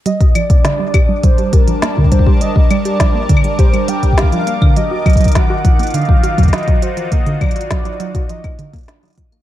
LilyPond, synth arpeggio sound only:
\new Staff \with { instrumentName = "Synth arpeggio sound" } { \clef bass \time 4/4 \key g \minor \tempo 4 = 102 g16 g'16 f16 bes16 d16 g16 g'16 g16 g16 g16 g'16 f16 bes16 d16 g16 g'16 | g16 g16 g16 g'16 f16 bes16 d16 g16 g'16 g16 g16 g16 g'16 f16 bes16 d16 | ges16 ges'16 ges16 ges16 ges16 ges'16 f16 bes16 d16 ges16 ges'16 ges16 ges16 ges16 ges'16 f16 | bes16 d16 ges16 ges'16 ges16 ges16 ges16 ges'16 f16 bes16 d16 bes16 d'16 ges16 f16 bes16 | }